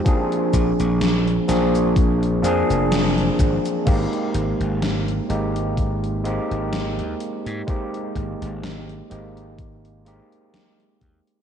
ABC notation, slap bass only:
X:1
M:4/4
L:1/16
Q:"Swing 16ths" 1/4=63
K:Ablyd
V:1 name="Slap bass" clef=bass
z2 B,,, B,,,3 B,,,4 F,, F,,,3 A,,, z | A,,, z A,,, A,,,3 A,,,4- A,,, A,,,2 E,, z A,, | z2 A,,, A,,,3 A,,,4- A,,, z3 E,, z |]